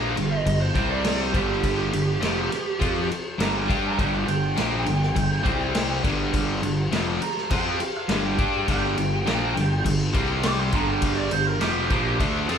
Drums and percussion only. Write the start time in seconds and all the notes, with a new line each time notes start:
0.17 crash
0.46 kick, crash
0.75 kick, crash
1.04 snare, crash
1.34 kick, crash
1.63 kick, crash
1.93 crash
2.22 snare, crash
2.52 snare, crash
2.81 kick, crash
3.11 crash
3.40 snare, crash
3.70 kick, crash
3.99 kick, crash
4.28 crash
4.57 snare, crash
4.86 snare, crash
5.03 snare
5.16 kick, crash
5.45 kick, crash
5.75 snare, crash
6.04 kick, crash
6.34 kick, crash
6.63 crash
6.92 snare, crash
7.22 crash
7.37 snare
7.50 kick, crash
7.80 crash
8.09 snare, crash
8.38 kick, crash
8.68 kick, crash
8.98 crash
9.27 snare, crash
9.57 snare, crash
9.86 kick, crash
10.14 kick, crash
10.43 snare, crash
10.72 kick, crash
11.02 kick, crash
11.31 crash
11.61 snare, crash
11.90 kick, crash
12.20 kick, crash
12.49 crash